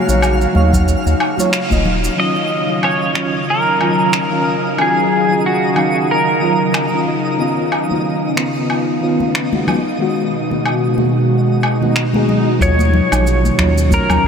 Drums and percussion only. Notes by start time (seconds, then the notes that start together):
0.08 high conga, shaker
0.22 low woodblock, shaker
0.41 shaker
0.55 high conga
0.73 kick, low conga, shaker
0.88 kick, shaker
1.07 shaker
1.20 low woodblock
1.38 high conga, shaker
1.53 finger snap, shaker
1.71 kick, high conga, shaker
1.85 low conga
2.04 shaker
2.83 low woodblock
3.15 finger snap
3.81 low woodblock
4.13 finger snap
4.78 low woodblock
5.76 low woodblock
6.74 finger snap, low woodblock
7.72 low woodblock
7.91 high conga
8.37 finger snap
8.70 low woodblock
9.20 high conga
9.35 finger snap
9.53 high conga
9.68 low conga, low woodblock
10.51 high conga
10.66 low woodblock
10.98 high conga
11.63 low woodblock
11.82 high conga
11.96 finger snap
12.14 high conga
12.29 low conga
12.61 kick, shaker
12.79 high conga, shaker
12.94 low conga
13.12 low woodblock, shaker
13.27 shaker
13.45 high conga, shaker
13.59 finger snap, kick, low conga
13.78 shaker
13.91 kick, high conga, shaker
14.10 low conga, low woodblock, shaker
14.24 kick